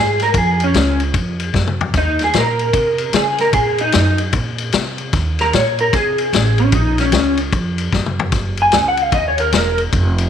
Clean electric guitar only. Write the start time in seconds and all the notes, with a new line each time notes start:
Already playing: G#4
0.23 A#4
0.38 G#4
0.64 C#4
1.97 D#4
2.24 G#4
2.38 A#4
3.16 G#4
3.41 A#4
3.54 G#4
3.81 D#4
5.41 A#4
5.55 C#5
5.81 A#4
5.94 G#4
6.60 C#4
6.75 D#4
7.00 C#4
8.62 G#5
8.88 F#5
9.02 F5
9.14 D#5
9.28 C#5
9.40 A#4
9.54 A#4